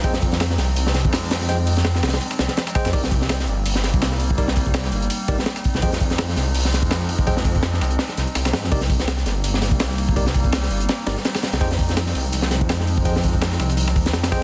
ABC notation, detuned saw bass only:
X:1
M:4/4
L:1/16
Q:"Swing 16ths" 1/4=166
K:Cm
V:1 name="Detuned saw bass" clef=bass
F,,6 C,,2 C,,3 F,,4- F,, | F,,6 C,,2 z2 C,, z4 F,, | C,,6 G,,,2 G,,,3 C,,4- C,, | C,,6 G,,,2 z2 G,,, z4 C,, |
F,,6 C,,2 C,,3 F,,4- F,, | F,,6 C,,2 z2 C,, z C,,2 A,, F,, | C,,6 G,,,2 G,,,3 C,,4- C,, | C,,6 G,,,2 z2 G,,, z4 C,, |
F,,6 C,,2 C,,3 F,,4- F,, | F,,6 C,,4 E,,2 F,,4 |]